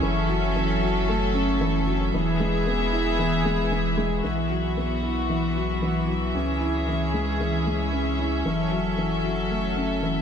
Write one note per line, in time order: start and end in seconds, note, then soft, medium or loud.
0.00 2.11 F#1 medium
0.00 0.28 E3 medium
0.00 2.12 F#3 medium
0.00 2.10 C#4 medium
0.00 2.12 A4 medium
0.00 2.11 E5 medium
0.29 0.45 F#3 medium
0.56 0.81 E3 medium
0.83 1.08 F#3 medium
1.09 1.24 A3 medium
1.34 1.60 C#4 medium
1.61 1.86 E3 medium
1.87 2.02 F#3 medium
2.13 4.22 E1 medium
2.13 4.22 E3 medium
2.13 2.39 E3 medium
2.13 4.22 B3 medium
2.13 4.22 G#4 medium
2.13 4.22 E5 medium
2.40 2.65 G#3 medium
2.67 2.82 B3 medium
2.93 3.18 E4 medium
3.19 3.44 E3 medium
3.45 3.60 G#3 medium
3.71 3.97 E3 medium
3.97 4.23 G#3 medium
4.24 6.33 B1 medium
4.24 4.49 E3 medium
4.24 8.42 E3 medium
4.24 6.33 B3 medium
4.24 6.33 F#4 medium
4.24 10.22 E5 medium
4.50 4.76 F#3 medium
4.77 4.92 B3 soft
5.03 5.28 E4 medium
5.29 5.55 E3 medium
5.56 5.71 F#3 medium
5.82 6.07 E3 medium
6.08 6.34 F#3 medium
6.35 8.43 C#2 medium
6.35 6.50 C#4 medium
6.35 10.22 C#4 medium
6.35 8.44 G#4 medium
6.61 6.86 E4 medium
6.88 7.13 E3 soft
7.14 7.29 G#3 medium
7.40 7.65 E3 medium
7.67 7.92 G#3 medium
7.93 8.08 C#4 medium
8.19 8.44 E4 medium
8.45 10.22 F#1 medium
8.45 8.71 E3 medium
8.45 10.22 F#3 medium
8.45 10.22 A4 medium
8.71 8.87 F#3 medium
8.98 9.23 E3 medium
9.24 9.49 F#3 medium
9.50 9.66 A3 medium
9.77 10.02 C#4 medium
10.03 10.22 E3 medium